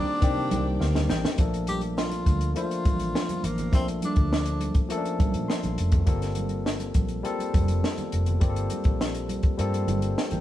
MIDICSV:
0, 0, Header, 1, 7, 480
1, 0, Start_track
1, 0, Key_signature, -2, "major"
1, 0, Tempo, 585366
1, 1140, Time_signature, 4, 2, 24, 8
1, 8533, End_track
2, 0, Start_track
2, 0, Title_t, "String section"
2, 0, Program_c, 0, 48
2, 0, Note_on_c, 0, 74, 69
2, 0, Note_on_c, 0, 79, 63
2, 1111, Note_off_c, 0, 79, 0
2, 1113, Note_off_c, 0, 74, 0
2, 8533, End_track
3, 0, Start_track
3, 0, Title_t, "Tenor saxophone"
3, 0, Program_c, 1, 66
3, 0, Note_on_c, 1, 62, 104
3, 667, Note_off_c, 1, 62, 0
3, 1382, Note_on_c, 1, 67, 90
3, 1489, Note_off_c, 1, 67, 0
3, 1621, Note_on_c, 1, 65, 83
3, 2067, Note_off_c, 1, 65, 0
3, 2109, Note_on_c, 1, 65, 90
3, 2828, Note_on_c, 1, 58, 80
3, 2840, Note_off_c, 1, 65, 0
3, 3063, Note_off_c, 1, 58, 0
3, 3070, Note_on_c, 1, 60, 85
3, 3175, Note_off_c, 1, 60, 0
3, 3320, Note_on_c, 1, 62, 80
3, 3997, Note_off_c, 1, 62, 0
3, 8533, End_track
4, 0, Start_track
4, 0, Title_t, "Tine electric piano"
4, 0, Program_c, 2, 4
4, 0, Control_c, 2, 64, 127
4, 0, Note_on_c, 2, 51, 73
4, 0, Note_on_c, 2, 58, 64
4, 0, Note_on_c, 2, 60, 61
4, 0, Note_on_c, 2, 67, 76
4, 0, Note_on_c, 2, 74, 66
4, 94, Note_off_c, 2, 51, 0
4, 97, Note_off_c, 2, 58, 0
4, 99, Note_off_c, 2, 60, 0
4, 103, Note_off_c, 2, 74, 0
4, 106, Note_off_c, 2, 67, 0
4, 170, Note_on_c, 2, 51, 79
4, 179, Note_on_c, 2, 58, 66
4, 184, Note_on_c, 2, 60, 74
4, 189, Note_on_c, 2, 62, 73
4, 197, Note_on_c, 2, 67, 91
4, 658, Note_on_c, 2, 77, 61
4, 882, Note_off_c, 2, 77, 0
4, 898, Note_on_c, 2, 79, 76
4, 1055, Note_off_c, 2, 51, 0
4, 1059, Note_off_c, 2, 58, 0
4, 1061, Note_off_c, 2, 60, 0
4, 1064, Note_off_c, 2, 62, 0
4, 1068, Note_off_c, 2, 67, 0
4, 1122, Note_off_c, 2, 79, 0
4, 1128, Note_on_c, 2, 53, 75
4, 1135, Note_on_c, 2, 57, 66
4, 1138, Note_on_c, 2, 58, 71
4, 1145, Note_on_c, 2, 62, 65
4, 1150, Control_c, 2, 64, 0
4, 1153, Note_on_c, 2, 69, 77
4, 1310, Control_c, 2, 64, 127
4, 2014, Note_off_c, 2, 53, 0
4, 2017, Note_off_c, 2, 57, 0
4, 2019, Note_off_c, 2, 58, 0
4, 2022, Note_off_c, 2, 62, 0
4, 2026, Note_off_c, 2, 69, 0
4, 2085, Note_on_c, 2, 53, 69
4, 2091, Note_on_c, 2, 57, 60
4, 2097, Note_on_c, 2, 58, 63
4, 2100, Note_on_c, 2, 62, 60
4, 2110, Note_on_c, 2, 72, 71
4, 2972, Note_off_c, 2, 53, 0
4, 2975, Note_off_c, 2, 57, 0
4, 2978, Note_off_c, 2, 58, 0
4, 2980, Note_off_c, 2, 62, 0
4, 2985, Note_off_c, 2, 72, 0
4, 3049, Note_on_c, 2, 53, 62
4, 3053, Note_on_c, 2, 57, 63
4, 3060, Note_on_c, 2, 58, 59
4, 3069, Note_on_c, 2, 62, 52
4, 3074, Note_on_c, 2, 69, 68
4, 3934, Note_off_c, 2, 53, 0
4, 3936, Note_off_c, 2, 57, 0
4, 3940, Note_off_c, 2, 58, 0
4, 3944, Note_off_c, 2, 62, 0
4, 3946, Note_off_c, 2, 69, 0
4, 4007, Note_on_c, 2, 53, 80
4, 4014, Note_on_c, 2, 57, 73
4, 4018, Note_on_c, 2, 58, 78
4, 4028, Note_on_c, 2, 61, 60
4, 4033, Note_on_c, 2, 69, 94
4, 4077, Note_off_c, 2, 61, 0
4, 4078, Note_on_c, 2, 62, 75
4, 4497, Note_on_c, 2, 84, 61
4, 4893, Note_off_c, 2, 53, 0
4, 4896, Note_off_c, 2, 57, 0
4, 4899, Note_off_c, 2, 58, 0
4, 4906, Note_off_c, 2, 69, 0
4, 4928, Note_off_c, 2, 62, 0
4, 4945, Note_off_c, 2, 84, 0
4, 4967, Note_on_c, 2, 55, 79
4, 4973, Note_on_c, 2, 58, 74
4, 4978, Note_on_c, 2, 60, 69
4, 4985, Note_on_c, 2, 65, 71
4, 4988, Control_c, 2, 64, 0
4, 4990, Note_on_c, 2, 69, 80
4, 5143, Control_c, 2, 64, 127
4, 5853, Note_off_c, 2, 55, 0
4, 5856, Note_off_c, 2, 58, 0
4, 5858, Note_off_c, 2, 60, 0
4, 5862, Note_off_c, 2, 65, 0
4, 5864, Note_off_c, 2, 69, 0
4, 5930, Note_on_c, 2, 55, 86
4, 5934, Note_on_c, 2, 58, 72
4, 5939, Note_on_c, 2, 60, 70
4, 5947, Note_on_c, 2, 65, 79
4, 5950, Note_on_c, 2, 69, 98
4, 6814, Note_off_c, 2, 55, 0
4, 6816, Note_off_c, 2, 58, 0
4, 6819, Note_off_c, 2, 60, 0
4, 6823, Note_off_c, 2, 65, 0
4, 6824, Note_off_c, 2, 69, 0
4, 6888, Note_on_c, 2, 55, 73
4, 6893, Note_on_c, 2, 58, 67
4, 6903, Note_on_c, 2, 60, 70
4, 6904, Note_on_c, 2, 65, 65
4, 6914, Note_on_c, 2, 67, 70
4, 6960, Note_off_c, 2, 67, 0
4, 6967, Note_on_c, 2, 69, 75
4, 7773, Note_off_c, 2, 55, 0
4, 7775, Note_off_c, 2, 58, 0
4, 7781, Note_off_c, 2, 60, 0
4, 7781, Note_off_c, 2, 65, 0
4, 7812, Note_off_c, 2, 69, 0
4, 7851, Note_on_c, 2, 55, 75
4, 7858, Note_on_c, 2, 58, 78
4, 7863, Note_on_c, 2, 60, 76
4, 7872, Note_on_c, 2, 65, 77
4, 7878, Note_on_c, 2, 69, 86
4, 8345, Note_off_c, 2, 65, 0
4, 8347, Note_off_c, 2, 69, 0
4, 8466, Note_on_c, 2, 79, 52
4, 8471, Note_on_c, 2, 70, 45
4, 8533, Note_off_c, 2, 55, 0
4, 8533, Note_off_c, 2, 58, 0
4, 8533, Note_off_c, 2, 60, 0
4, 8533, Note_off_c, 2, 70, 0
4, 8533, Note_off_c, 2, 79, 0
4, 8533, End_track
5, 0, Start_track
5, 0, Title_t, "Trombone section"
5, 0, Program_c, 3, 61
5, 0, Note_on_c, 3, 46, 73
5, 0, Note_on_c, 3, 55, 67
5, 0, Note_on_c, 3, 74, 79
5, 867, Note_off_c, 3, 46, 0
5, 867, Note_off_c, 3, 55, 0
5, 867, Note_off_c, 3, 74, 0
5, 8533, End_track
6, 0, Start_track
6, 0, Title_t, "Fingered electric bass"
6, 0, Program_c, 4, 33
6, 184, Note_on_c, 4, 48, 92
6, 422, Note_on_c, 4, 36, 96
6, 434, Note_off_c, 4, 48, 0
6, 636, Note_off_c, 4, 36, 0
6, 659, Note_on_c, 4, 38, 83
6, 874, Note_off_c, 4, 38, 0
6, 899, Note_on_c, 4, 33, 90
6, 1007, Note_off_c, 4, 33, 0
6, 1137, Note_on_c, 4, 34, 92
6, 1825, Note_off_c, 4, 34, 0
6, 1858, Note_on_c, 4, 38, 81
6, 2073, Note_off_c, 4, 38, 0
6, 2344, Note_on_c, 4, 33, 90
6, 2556, Note_off_c, 4, 33, 0
6, 2817, Note_on_c, 4, 33, 84
6, 3057, Note_off_c, 4, 33, 0
6, 3057, Note_on_c, 4, 34, 97
6, 3273, Note_off_c, 4, 34, 0
6, 3418, Note_on_c, 4, 38, 72
6, 3848, Note_off_c, 4, 38, 0
6, 4265, Note_on_c, 4, 34, 88
6, 4369, Note_off_c, 4, 34, 0
6, 4381, Note_on_c, 4, 46, 84
6, 4487, Note_off_c, 4, 46, 0
6, 4625, Note_on_c, 4, 34, 81
6, 4729, Note_off_c, 4, 34, 0
6, 4744, Note_on_c, 4, 29, 76
6, 4956, Note_off_c, 4, 29, 0
6, 4980, Note_on_c, 4, 31, 86
6, 5667, Note_off_c, 4, 31, 0
6, 5699, Note_on_c, 4, 34, 77
6, 5913, Note_off_c, 4, 34, 0
6, 6187, Note_on_c, 4, 29, 79
6, 6398, Note_off_c, 4, 29, 0
6, 6666, Note_on_c, 4, 29, 76
6, 6877, Note_off_c, 4, 29, 0
6, 6903, Note_on_c, 4, 31, 92
6, 7115, Note_off_c, 4, 31, 0
6, 7261, Note_on_c, 4, 34, 81
6, 7689, Note_off_c, 4, 34, 0
6, 7862, Note_on_c, 4, 43, 75
6, 8074, Note_off_c, 4, 43, 0
6, 8097, Note_on_c, 4, 31, 87
6, 8312, Note_off_c, 4, 31, 0
6, 8461, Note_on_c, 4, 33, 80
6, 8533, Note_off_c, 4, 33, 0
6, 8533, End_track
7, 0, Start_track
7, 0, Title_t, "Drums"
7, 168, Note_on_c, 9, 62, 32
7, 180, Note_on_c, 9, 42, 74
7, 182, Note_on_c, 9, 36, 87
7, 250, Note_off_c, 9, 62, 0
7, 262, Note_off_c, 9, 42, 0
7, 264, Note_off_c, 9, 36, 0
7, 296, Note_on_c, 9, 62, 33
7, 378, Note_off_c, 9, 62, 0
7, 414, Note_on_c, 9, 63, 78
7, 421, Note_on_c, 9, 42, 75
7, 496, Note_off_c, 9, 63, 0
7, 503, Note_off_c, 9, 42, 0
7, 656, Note_on_c, 9, 62, 38
7, 664, Note_on_c, 9, 38, 52
7, 738, Note_off_c, 9, 62, 0
7, 746, Note_off_c, 9, 38, 0
7, 775, Note_on_c, 9, 62, 29
7, 775, Note_on_c, 9, 63, 47
7, 775, Note_on_c, 9, 64, 66
7, 783, Note_on_c, 9, 38, 71
7, 857, Note_off_c, 9, 62, 0
7, 857, Note_off_c, 9, 63, 0
7, 857, Note_off_c, 9, 64, 0
7, 865, Note_off_c, 9, 38, 0
7, 899, Note_on_c, 9, 38, 93
7, 981, Note_off_c, 9, 38, 0
7, 1018, Note_on_c, 9, 64, 73
7, 1023, Note_on_c, 9, 38, 97
7, 1100, Note_off_c, 9, 64, 0
7, 1105, Note_off_c, 9, 38, 0
7, 1131, Note_on_c, 9, 42, 78
7, 1136, Note_on_c, 9, 36, 90
7, 1136, Note_on_c, 9, 62, 27
7, 1213, Note_off_c, 9, 42, 0
7, 1218, Note_off_c, 9, 36, 0
7, 1218, Note_off_c, 9, 62, 0
7, 1261, Note_on_c, 9, 42, 49
7, 1343, Note_off_c, 9, 42, 0
7, 1370, Note_on_c, 9, 42, 60
7, 1381, Note_on_c, 9, 63, 59
7, 1452, Note_off_c, 9, 42, 0
7, 1463, Note_off_c, 9, 63, 0
7, 1486, Note_on_c, 9, 42, 41
7, 1568, Note_off_c, 9, 42, 0
7, 1612, Note_on_c, 9, 62, 26
7, 1622, Note_on_c, 9, 38, 89
7, 1694, Note_off_c, 9, 62, 0
7, 1704, Note_off_c, 9, 38, 0
7, 1720, Note_on_c, 9, 62, 29
7, 1733, Note_on_c, 9, 42, 55
7, 1802, Note_off_c, 9, 62, 0
7, 1815, Note_off_c, 9, 42, 0
7, 1851, Note_on_c, 9, 63, 52
7, 1856, Note_on_c, 9, 36, 81
7, 1857, Note_on_c, 9, 42, 68
7, 1933, Note_off_c, 9, 63, 0
7, 1938, Note_off_c, 9, 36, 0
7, 1939, Note_off_c, 9, 42, 0
7, 1974, Note_on_c, 9, 42, 44
7, 2056, Note_off_c, 9, 42, 0
7, 2089, Note_on_c, 9, 62, 29
7, 2098, Note_on_c, 9, 42, 68
7, 2171, Note_off_c, 9, 62, 0
7, 2180, Note_off_c, 9, 42, 0
7, 2224, Note_on_c, 9, 42, 49
7, 2306, Note_off_c, 9, 42, 0
7, 2340, Note_on_c, 9, 42, 64
7, 2340, Note_on_c, 9, 63, 65
7, 2341, Note_on_c, 9, 36, 92
7, 2422, Note_off_c, 9, 42, 0
7, 2422, Note_off_c, 9, 63, 0
7, 2423, Note_off_c, 9, 36, 0
7, 2456, Note_on_c, 9, 42, 51
7, 2538, Note_off_c, 9, 42, 0
7, 2586, Note_on_c, 9, 38, 96
7, 2668, Note_off_c, 9, 38, 0
7, 2698, Note_on_c, 9, 62, 24
7, 2698, Note_on_c, 9, 63, 41
7, 2698, Note_on_c, 9, 64, 54
7, 2699, Note_on_c, 9, 42, 48
7, 2780, Note_off_c, 9, 62, 0
7, 2780, Note_off_c, 9, 63, 0
7, 2780, Note_off_c, 9, 64, 0
7, 2781, Note_off_c, 9, 42, 0
7, 2820, Note_on_c, 9, 42, 73
7, 2902, Note_off_c, 9, 42, 0
7, 2934, Note_on_c, 9, 42, 48
7, 2938, Note_on_c, 9, 64, 70
7, 3016, Note_off_c, 9, 42, 0
7, 3020, Note_off_c, 9, 64, 0
7, 3046, Note_on_c, 9, 62, 31
7, 3056, Note_on_c, 9, 36, 95
7, 3060, Note_on_c, 9, 42, 84
7, 3128, Note_off_c, 9, 62, 0
7, 3138, Note_off_c, 9, 36, 0
7, 3142, Note_off_c, 9, 42, 0
7, 3172, Note_on_c, 9, 62, 29
7, 3183, Note_on_c, 9, 42, 49
7, 3254, Note_off_c, 9, 62, 0
7, 3265, Note_off_c, 9, 42, 0
7, 3298, Note_on_c, 9, 42, 67
7, 3298, Note_on_c, 9, 63, 58
7, 3380, Note_off_c, 9, 42, 0
7, 3380, Note_off_c, 9, 63, 0
7, 3410, Note_on_c, 9, 42, 40
7, 3417, Note_on_c, 9, 36, 90
7, 3492, Note_off_c, 9, 42, 0
7, 3499, Note_off_c, 9, 36, 0
7, 3532, Note_on_c, 9, 62, 24
7, 3547, Note_on_c, 9, 38, 98
7, 3614, Note_off_c, 9, 62, 0
7, 3629, Note_off_c, 9, 38, 0
7, 3654, Note_on_c, 9, 42, 54
7, 3736, Note_off_c, 9, 42, 0
7, 3771, Note_on_c, 9, 63, 52
7, 3777, Note_on_c, 9, 42, 72
7, 3853, Note_off_c, 9, 63, 0
7, 3859, Note_off_c, 9, 42, 0
7, 3890, Note_on_c, 9, 42, 45
7, 3894, Note_on_c, 9, 36, 84
7, 3972, Note_off_c, 9, 42, 0
7, 3976, Note_off_c, 9, 36, 0
7, 4008, Note_on_c, 9, 62, 31
7, 4018, Note_on_c, 9, 42, 72
7, 4090, Note_off_c, 9, 62, 0
7, 4100, Note_off_c, 9, 42, 0
7, 4145, Note_on_c, 9, 42, 51
7, 4227, Note_off_c, 9, 42, 0
7, 4255, Note_on_c, 9, 63, 76
7, 4263, Note_on_c, 9, 36, 90
7, 4263, Note_on_c, 9, 42, 70
7, 4337, Note_off_c, 9, 63, 0
7, 4345, Note_off_c, 9, 36, 0
7, 4345, Note_off_c, 9, 42, 0
7, 4377, Note_on_c, 9, 42, 49
7, 4459, Note_off_c, 9, 42, 0
7, 4507, Note_on_c, 9, 38, 92
7, 4589, Note_off_c, 9, 38, 0
7, 4618, Note_on_c, 9, 63, 46
7, 4618, Note_on_c, 9, 64, 58
7, 4620, Note_on_c, 9, 42, 45
7, 4700, Note_off_c, 9, 63, 0
7, 4700, Note_off_c, 9, 64, 0
7, 4702, Note_off_c, 9, 42, 0
7, 4739, Note_on_c, 9, 42, 80
7, 4821, Note_off_c, 9, 42, 0
7, 4851, Note_on_c, 9, 42, 52
7, 4858, Note_on_c, 9, 36, 91
7, 4863, Note_on_c, 9, 64, 73
7, 4933, Note_off_c, 9, 42, 0
7, 4940, Note_off_c, 9, 36, 0
7, 4945, Note_off_c, 9, 64, 0
7, 4974, Note_on_c, 9, 62, 31
7, 4975, Note_on_c, 9, 42, 88
7, 4978, Note_on_c, 9, 36, 90
7, 5056, Note_off_c, 9, 62, 0
7, 5057, Note_off_c, 9, 42, 0
7, 5060, Note_off_c, 9, 36, 0
7, 5100, Note_on_c, 9, 38, 32
7, 5100, Note_on_c, 9, 42, 48
7, 5182, Note_off_c, 9, 38, 0
7, 5182, Note_off_c, 9, 42, 0
7, 5207, Note_on_c, 9, 42, 67
7, 5226, Note_on_c, 9, 63, 58
7, 5289, Note_off_c, 9, 42, 0
7, 5308, Note_off_c, 9, 63, 0
7, 5323, Note_on_c, 9, 42, 40
7, 5405, Note_off_c, 9, 42, 0
7, 5463, Note_on_c, 9, 38, 92
7, 5545, Note_off_c, 9, 38, 0
7, 5573, Note_on_c, 9, 62, 31
7, 5576, Note_on_c, 9, 42, 57
7, 5655, Note_off_c, 9, 62, 0
7, 5658, Note_off_c, 9, 42, 0
7, 5693, Note_on_c, 9, 63, 55
7, 5694, Note_on_c, 9, 42, 69
7, 5698, Note_on_c, 9, 36, 75
7, 5775, Note_off_c, 9, 63, 0
7, 5776, Note_off_c, 9, 42, 0
7, 5780, Note_off_c, 9, 36, 0
7, 5810, Note_on_c, 9, 42, 41
7, 5892, Note_off_c, 9, 42, 0
7, 5928, Note_on_c, 9, 62, 33
7, 5942, Note_on_c, 9, 42, 64
7, 6010, Note_off_c, 9, 62, 0
7, 6024, Note_off_c, 9, 42, 0
7, 6058, Note_on_c, 9, 62, 32
7, 6069, Note_on_c, 9, 42, 48
7, 6140, Note_off_c, 9, 62, 0
7, 6151, Note_off_c, 9, 42, 0
7, 6180, Note_on_c, 9, 63, 72
7, 6184, Note_on_c, 9, 42, 74
7, 6186, Note_on_c, 9, 36, 90
7, 6262, Note_off_c, 9, 63, 0
7, 6266, Note_off_c, 9, 42, 0
7, 6268, Note_off_c, 9, 36, 0
7, 6299, Note_on_c, 9, 42, 51
7, 6381, Note_off_c, 9, 42, 0
7, 6423, Note_on_c, 9, 62, 30
7, 6429, Note_on_c, 9, 38, 91
7, 6505, Note_off_c, 9, 62, 0
7, 6511, Note_off_c, 9, 38, 0
7, 6539, Note_on_c, 9, 42, 46
7, 6543, Note_on_c, 9, 63, 43
7, 6543, Note_on_c, 9, 64, 59
7, 6621, Note_off_c, 9, 42, 0
7, 6625, Note_off_c, 9, 63, 0
7, 6625, Note_off_c, 9, 64, 0
7, 6661, Note_on_c, 9, 42, 75
7, 6743, Note_off_c, 9, 42, 0
7, 6775, Note_on_c, 9, 42, 49
7, 6783, Note_on_c, 9, 64, 73
7, 6857, Note_off_c, 9, 42, 0
7, 6865, Note_off_c, 9, 64, 0
7, 6896, Note_on_c, 9, 62, 28
7, 6897, Note_on_c, 9, 42, 86
7, 6900, Note_on_c, 9, 36, 94
7, 6978, Note_off_c, 9, 62, 0
7, 6979, Note_off_c, 9, 42, 0
7, 6982, Note_off_c, 9, 36, 0
7, 7021, Note_on_c, 9, 42, 49
7, 7103, Note_off_c, 9, 42, 0
7, 7132, Note_on_c, 9, 42, 64
7, 7144, Note_on_c, 9, 63, 64
7, 7214, Note_off_c, 9, 42, 0
7, 7226, Note_off_c, 9, 63, 0
7, 7247, Note_on_c, 9, 42, 41
7, 7258, Note_on_c, 9, 36, 84
7, 7329, Note_off_c, 9, 42, 0
7, 7340, Note_off_c, 9, 36, 0
7, 7372, Note_on_c, 9, 62, 29
7, 7387, Note_on_c, 9, 38, 96
7, 7454, Note_off_c, 9, 62, 0
7, 7469, Note_off_c, 9, 38, 0
7, 7499, Note_on_c, 9, 42, 55
7, 7581, Note_off_c, 9, 42, 0
7, 7613, Note_on_c, 9, 63, 54
7, 7620, Note_on_c, 9, 42, 66
7, 7695, Note_off_c, 9, 63, 0
7, 7702, Note_off_c, 9, 42, 0
7, 7730, Note_on_c, 9, 42, 43
7, 7736, Note_on_c, 9, 36, 78
7, 7812, Note_off_c, 9, 42, 0
7, 7818, Note_off_c, 9, 36, 0
7, 7851, Note_on_c, 9, 62, 28
7, 7862, Note_on_c, 9, 42, 71
7, 7933, Note_off_c, 9, 62, 0
7, 7944, Note_off_c, 9, 42, 0
7, 7977, Note_on_c, 9, 62, 32
7, 7987, Note_on_c, 9, 42, 53
7, 8059, Note_off_c, 9, 62, 0
7, 8069, Note_off_c, 9, 42, 0
7, 8094, Note_on_c, 9, 63, 72
7, 8102, Note_on_c, 9, 42, 74
7, 8176, Note_off_c, 9, 63, 0
7, 8184, Note_off_c, 9, 42, 0
7, 8217, Note_on_c, 9, 42, 52
7, 8299, Note_off_c, 9, 42, 0
7, 8346, Note_on_c, 9, 62, 31
7, 8347, Note_on_c, 9, 38, 93
7, 8428, Note_off_c, 9, 62, 0
7, 8429, Note_off_c, 9, 38, 0
7, 8453, Note_on_c, 9, 42, 45
7, 8460, Note_on_c, 9, 62, 26
7, 8460, Note_on_c, 9, 63, 39
7, 8460, Note_on_c, 9, 64, 56
7, 8533, Note_off_c, 9, 42, 0
7, 8533, Note_off_c, 9, 62, 0
7, 8533, Note_off_c, 9, 63, 0
7, 8533, Note_off_c, 9, 64, 0
7, 8533, End_track
0, 0, End_of_file